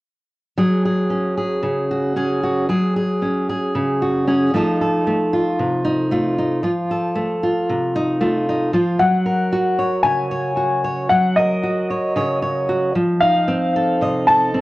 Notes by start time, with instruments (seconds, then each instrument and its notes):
0.58 steel-string acoustic guitar F#3 G#4
0.85 steel-string acoustic guitar G#4
1.10 steel-string acoustic guitar C#4
1.37 steel-string acoustic guitar G#4
1.63 steel-string acoustic guitar C#3
1.91 steel-string acoustic guitar F#4
2.16 steel-string acoustic guitar C#4 G#4
2.43 steel-string acoustic guitar F#4
2.69 steel-string acoustic guitar F#3 G#4
2.96 steel-string acoustic guitar G#4
3.22 steel-string acoustic guitar C#4
3.50 steel-string acoustic guitar G#4
3.75 steel-string acoustic guitar C#3
4.02 steel-string acoustic guitar F#4
4.28 steel-string acoustic guitar C#4 G#4
4.54 steel-string acoustic guitar F3 A3 D#4 F4 A4
4.81 steel-string acoustic guitar A4
5.06 steel-string acoustic guitar A3
5.33 steel-string acoustic guitar F4
5.59 steel-string acoustic guitar C3
5.84 steel-string acoustic guitar D#4
6.11 steel-string acoustic guitar A3 F4
6.38 steel-string acoustic guitar D#4
6.63 steel-string acoustic guitar F3 F4
6.91 steel-string acoustic guitar A4
7.15 steel-string acoustic guitar A3
7.43 steel-string acoustic guitar F4
7.69 steel-string acoustic guitar C3
7.96 steel-string acoustic guitar D#4
8.21 steel-string acoustic guitar A3 F4
8.49 steel-string acoustic guitar D#4
8.73 steel-string acoustic guitar F3 F4
8.99 steel-string acoustic guitar F#3, upright piano F#5
9.26 steel-string acoustic guitar A#4
9.53 steel-string acoustic guitar F#4
9.79 steel-string acoustic guitar C#5
10.03 steel-string acoustic guitar C#3 C#5, upright piano G#5
10.31 steel-string acoustic guitar C#5
10.57 steel-string acoustic guitar F#4
10.84 steel-string acoustic guitar C#5
11.09 steel-string acoustic guitar F#3, upright piano F#5
11.36 steel-string acoustic guitar A#4, upright piano D#5
11.63 steel-string acoustic guitar F#4
11.90 steel-string acoustic guitar C#5
12.16 steel-string acoustic guitar C#3 C#5
12.42 steel-string acoustic guitar C#5
12.69 steel-string acoustic guitar F#4
12.95 steel-string acoustic guitar F3
13.20 steel-string acoustic guitar D#4, upright piano F5
13.48 steel-string acoustic guitar C4
13.76 steel-string acoustic guitar A4
14.01 steel-string acoustic guitar C3 D#5
14.27 steel-string acoustic guitar A4, upright piano A5
14.54 steel-string acoustic guitar C4